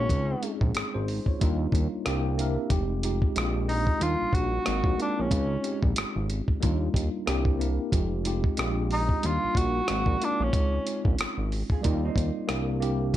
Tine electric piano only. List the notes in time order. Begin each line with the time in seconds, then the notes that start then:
Already playing: G#3 A#3 C4 D#4 F#4
0.08 G#3 C4 C#4 D#4 F4
0.41 G#3 C4 C#4 D#4 G#4
0.75 C4 G#4
0.94 D#4 C5
1.28 F4 C#5
1.40 G3 A#3 D4 D#4 F4
2.05 A#3 C4 D4 E4 G4 G5
2.38 A#3 C4 D4 E4 A#4 E5
2.69 G#3 C4 D#4 F4 G4
3.03 G#3 C4 D#4 F4 G4
3.36 G#3 C4 D4 F4 F#4
3.45 G4
3.99 G3 A#3 D4 D#4 F4
4.65 G#3 A#3 C4 D#4 F#4
4.97 G#3 A#3 C4 D#4 F4
5.30 G#3 C4 C#4 D#4 F4
5.62 G#3 C4 C#4 D#4 G4
6.60 G3 A#3 D4 D#4 F4
7.26 A#3 C4 D4 E4 G4
7.59 A#3 C4 D4 E4 A#4
7.91 G#3 C4 D#4 F4 G4
8.24 G#3 C4 D#4 F4 G4
8.57 G#3 C4 D4 F4 G4
9.23 G3 A#3 D4 D#4 F4
9.87 G#3 A#3 C4 D#4 F#4
10.19 G#3 A#3 C4 D#4 F4
10.52 G#3 C4 F4
10.84 G#3 C4 C#4 D#4 F4
11.81 G3 A#3 D#4 F4 D5
12.47 A#3 C4 D4 E4 G4
12.80 A#3 C4 D4 E4 G4
13.12 G#3 C4